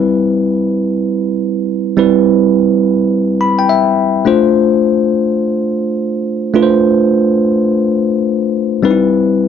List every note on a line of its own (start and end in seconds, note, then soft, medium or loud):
0.00 1.93 G3 medium
0.00 1.94 C4 medium
0.00 1.94 E4 medium
0.00 1.94 B4 medium
1.97 4.22 G3 medium
1.97 4.22 C4 medium
1.97 4.23 E4 medium
1.97 4.23 B4 medium
3.41 3.57 B5 medium
3.59 3.68 G5 medium
3.69 4.22 E5 medium
4.25 6.50 A3 medium
4.25 6.51 D4 medium
4.25 6.51 F4 medium
4.25 6.51 C5 medium
6.54 8.79 A3 medium
6.54 8.79 D4 medium
6.54 8.80 F4 medium
6.54 6.64 B4 medium
6.62 8.83 C5 medium
8.83 9.48 G3 medium
8.83 9.48 C4 medium
8.83 8.92 D#4 medium
8.83 9.48 B4 medium
8.91 9.48 E4 medium